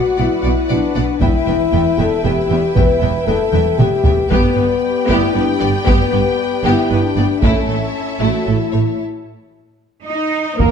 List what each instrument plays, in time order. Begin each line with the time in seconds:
Already playing: french horn section F#4, string section F#4 B4 D5 F#5
0.17 double bass section B1, cello section B2, viola section B3, french horn section E4, violin section D5 F#5
0.43 double bass section B1, cello section B2, viola section B3, violin section D5 F#5
0.69 double bass section B1, cello section B2, viola section B3, french horn section D4, violin section D5 F#5
0.94 double bass section B1, cello section B2, viola section B3, violin section D5 F#5
1.20 double bass section E1, cello section E2, viola section B3, string section E4 E5 G5, french horn section E4, violin section E5 G5, taiko
1.46 double bass section E1, cello section E2, viola section B3, violin section E5 G5
1.72 double bass section E1, cello section E2, viola section B3, violin section E5 G5
1.97 double bass section E1, cello section E2, viola section B3, french horn section A4, violin section E5 G5
2.24 double bass section E1, cello section E2, viola section B3, french horn section G4, violin section E5 G5
2.49 double bass section E1, cello section E2, viola section B3, violin section E5 G5
2.74 double bass section E1, cello section E2, viola section B3, french horn section B4, violin section E5 G5, taiko
3.01 double bass section E1, cello section E2, viola section B3, violin section E5 G5
3.27 double bass section E1, cello section E2, viola section B3, french horn section A4, violin section E5 G5
3.53 double bass section E1, cello section E2, viola section B3, violin section E5 G5, taiko high
3.78 double bass section E1, cello section E2, viola section B3, french horn section G4, violin section E5 G5, taiko mid
4.04 double bass section E1, cello section E2, viola section B3, violin section E5 G5, taiko low
4.30 double bass section G1, cello section G2, french horn section B3, viola section B3, violin section G4 G5, string section G4 B4 D5, taiko
4.56 double bass section G1, cello section G2, viola section B3, violin section B4
5.07 double bass section G1, cello section G2, viola section B3, french horn section E4, violin section G4
5.34 double bass section G1, cello section G2, viola section B3, french horn section D4, violin section B4
5.60 double bass section G1, cello section G2, viola section B3, violin section D5
5.85 double bass section G1, cello section G2, french horn section B3, viola section B3, violin section G4, taiko
6.12 double bass section G1, cello section G2, viola section B3, violin section B4
6.64 double bass section G1, cello section G2, viola section B3, french horn section E4, violin section G4
6.91 double bass section G1, cello section G2, viola section B3, french horn section D4, violin section B4
7.16 double bass section G1, cello section G2, viola section B3, violin section D5
7.42 double bass section A1, cello section A2, viola section A3, french horn section C#4, string section E4 A4 C#5 A5, violin section E4 E5, taiko
7.67 double bass section A1, cello section A2, viola section A3, violin section A4
8.20 double bass section A1, cello section A2, viola section A3, violin section E4, french horn section F#4
8.46 double bass section A1, cello section A2, viola section A3, french horn section E4, violin section A4
8.71 double bass section A1, cello section A2, viola section A3, violin section C#5
10.05 cello section D#4, violin section D#5, trumpet D#5
10.58 double bass section D#2, violin section A#3 A#4, cello section A#3, string section F#4 A#4 D#5 F#5, french horn section F#4, viola section A#4, trumpet A#4, taiko